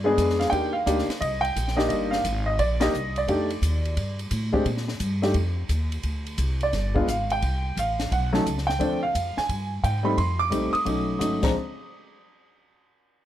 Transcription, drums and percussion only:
0.18 kick, hi-hat pedal, ride
0.30 snare
0.41 snare, ride
0.52 kick, ride
0.87 kick, hi-hat pedal, ride
0.99 snare
1.10 snare, ride
1.21 kick, ride
1.45 ride
1.56 kick, hi-hat pedal, ride
1.68 snare
1.79 snare
1.90 kick, ride
2.13 snare
2.25 kick, hi-hat pedal, ride
2.59 kick, ride
2.81 snare, ride
2.94 hi-hat pedal
3.16 ride
3.28 kick, ride
3.50 ride
3.62 kick, hi-hat pedal, ride
3.85 ride
3.97 kick, ride
4.19 ride
4.31 kick, hi-hat pedal, ride
4.54 kick
4.66 kick, ride
4.77 snare
4.88 snare
5.00 kick, hi-hat pedal, ride
5.23 snare, ride
5.34 kick, ride
5.69 kick, hi-hat pedal, ride
5.92 ride
6.03 kick, ride
6.27 ride
6.38 kick, hi-hat pedal, ride
6.61 ride
6.73 kick, snare, ride
6.96 kick
7.08 kick, hi-hat pedal, ride
7.30 ride
7.42 kick, ride
7.77 kick, hi-hat pedal, ride
8.00 snare, ride
8.12 kick, ride
8.34 snare
8.46 kick, hi-hat pedal, ride
8.58 snare
8.69 snare
8.81 kick, ride
9.15 kick, hi-hat pedal, ride
9.37 snare
9.49 kick, ride
9.84 kick, hi-hat pedal, ride
10.18 kick, ride
10.52 kick, hi-hat pedal, ride
10.75 ride
10.86 kick, ride
11.21 kick, hi-hat pedal, ride
11.43 kick, snare, crash

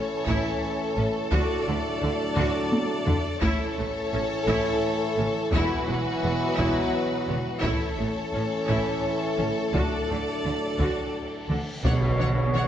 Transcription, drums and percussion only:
0.27 taiko
1.33 taiko
2.37 taiko low-mid
2.72 taiko high
3.08 taiko low
3.42 taiko
4.48 taiko
5.18 taiko mid
5.53 taiko
6.59 taiko
7.29 taiko mid
7.63 taiko
8.69 taiko
9.39 taiko mid
9.74 taiko
10.80 taiko
11.50 taiko mid
11.84 taiko, tam-tam
12.20 taiko mid
12.55 taiko mid

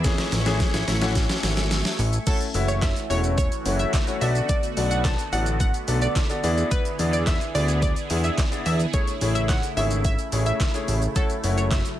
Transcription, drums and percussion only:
0.04 kick, snare, closed hi-hat, shaker
0.18 snare, closed hi-hat, shaker
0.32 snare, open hi-hat, shaker
0.46 snare, closed hi-hat, shaker
0.60 kick, snare, closed hi-hat, shaker
0.74 snare, closed hi-hat, shaker
0.88 snare, open hi-hat, shaker
1.01 snare, closed hi-hat, shaker
1.15 kick, snare, closed hi-hat, shaker
1.29 snare, closed hi-hat, shaker
1.43 snare, open hi-hat, shaker
1.57 snare, closed hi-hat, shaker
1.71 snare, closed hi-hat, shaker
1.85 snare, closed hi-hat, shaker
1.99 open hi-hat, shaker
2.13 closed hi-hat, shaker
2.27 kick, closed hi-hat, crash, shaker
2.41 closed hi-hat, shaker
2.54 open hi-hat, shaker
2.68 closed hi-hat, shaker
2.82 kick, snare, clap, closed hi-hat, shaker
2.96 closed hi-hat, shaker
3.11 open hi-hat, shaker
3.24 closed hi-hat, shaker
3.38 kick, closed hi-hat, shaker
3.52 closed hi-hat, shaker
3.66 open hi-hat, shaker
3.79 closed hi-hat, shaker
3.93 kick, snare, clap, closed hi-hat, shaker
4.07 closed hi-hat, shaker
4.21 open hi-hat, shaker
4.35 closed hi-hat, shaker
4.49 kick, closed hi-hat, shaker
4.63 closed hi-hat, shaker
4.77 open hi-hat, shaker
4.91 closed hi-hat, shaker
5.05 kick, snare, clap, closed hi-hat, shaker
5.19 closed hi-hat, shaker
5.33 open hi-hat, shaker
5.46 closed hi-hat, shaker
5.60 kick, closed hi-hat, shaker
5.74 closed hi-hat, shaker
5.88 open hi-hat, shaker
6.02 closed hi-hat, shaker
6.16 kick, snare, clap, closed hi-hat, shaker
6.30 closed hi-hat, shaker
6.44 open hi-hat, shaker
6.58 closed hi-hat, shaker
6.71 kick, closed hi-hat, shaker
6.85 closed hi-hat, shaker
6.99 open hi-hat, shaker
7.13 closed hi-hat, shaker
7.27 kick, snare, clap, closed hi-hat, shaker
7.41 closed hi-hat, shaker
7.55 open hi-hat, shaker
7.68 closed hi-hat, shaker
7.82 kick, closed hi-hat, shaker
7.96 closed hi-hat, shaker
8.10 open hi-hat, shaker
8.24 shaker
8.38 kick, snare, clap, closed hi-hat, shaker
8.52 closed hi-hat, shaker
8.66 open hi-hat, shaker
8.80 closed hi-hat, shaker
8.93 kick, closed hi-hat, shaker
9.08 closed hi-hat, shaker
9.21 open hi-hat, shaker
9.35 closed hi-hat, shaker
9.49 kick, snare, clap, closed hi-hat, shaker
9.63 closed hi-hat, shaker
9.77 open hi-hat, shaker
9.91 closed hi-hat, shaker
10.05 kick, closed hi-hat, shaker
10.19 closed hi-hat, shaker
10.32 open hi-hat, shaker
10.46 closed hi-hat, shaker
10.60 kick, snare, clap, closed hi-hat, shaker
10.74 closed hi-hat, shaker
10.88 open hi-hat, shaker
11.02 closed hi-hat, shaker
11.16 kick, closed hi-hat, shaker
11.30 closed hi-hat, shaker
11.44 open hi-hat, shaker
11.57 closed hi-hat, shaker
11.71 kick, snare, clap, closed hi-hat, shaker
11.85 closed hi-hat, shaker

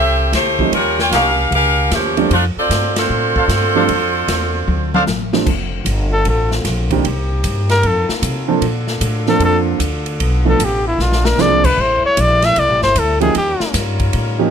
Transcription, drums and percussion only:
0.33 snare, hi-hat pedal, ride
0.59 kick
0.73 ride
0.99 snare
1.12 snare, hi-hat pedal, ride
1.52 ride
1.91 snare, hi-hat pedal, ride
2.17 ride
2.31 ride
2.71 snare, hi-hat pedal, ride
2.96 snare, ride
3.36 kick
3.49 snare, hi-hat pedal, ride
3.89 ride
4.28 snare, hi-hat pedal, ride
4.68 high tom
4.94 high tom
5.07 snare, hi-hat pedal
5.33 snare
5.47 kick, crash
5.86 hi-hat pedal, ride
6.25 ride
6.51 snare
6.65 snare, hi-hat pedal, ride
6.91 kick, ride
7.05 ride
7.44 hi-hat pedal, ride
7.69 snare, ride
7.83 ride
8.09 snare
8.23 hi-hat pedal, ride
8.62 ride
8.87 snare
9.01 hi-hat pedal, ride
9.27 snare
9.40 ride
9.80 hi-hat pedal, ride
10.06 ride
10.20 ride
10.60 hi-hat pedal, ride
10.99 snare
11.12 snare
11.25 snare
11.39 snare, hi-hat pedal
11.64 kick, crash
12.17 hi-hat pedal, ride
12.42 snare, ride
12.56 ride
12.82 snare
12.96 hi-hat pedal, ride
13.21 ride
13.35 ride
13.60 snare
13.74 snare, hi-hat pedal, ride
14.00 kick, ride
14.13 ride

